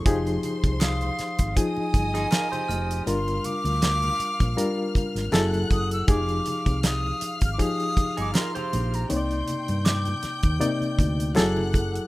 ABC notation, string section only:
X:1
M:4/4
L:1/8
Q:"Swing 16ths" 1/4=80
K:Fdor
V:1 name="String section"
[cc']4 [ee']4 | [ff']6 [_g_g']2 | [ff']8 | [gg']6 [_g_g']2 |]